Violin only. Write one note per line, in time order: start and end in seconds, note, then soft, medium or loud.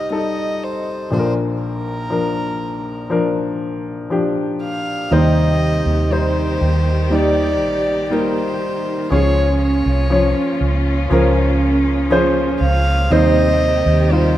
0.00 0.12 D#5 medium
0.12 0.65 D#5 medium
0.63 1.12 C5 medium
1.13 1.33 C5 medium
1.63 3.08 A#4 medium
4.63 5.14 F5 medium
5.12 6.14 D#5 medium
6.13 7.16 C5 medium
7.14 8.06 D5 medium
8.06 8.15 D5 soft
8.13 9.12 C5 medium
9.13 9.58 C#5 medium
9.62 10.58 C#5 medium
12.62 13.13 F5 medium
13.12 14.13 D#5 medium
14.12 14.38 C5 medium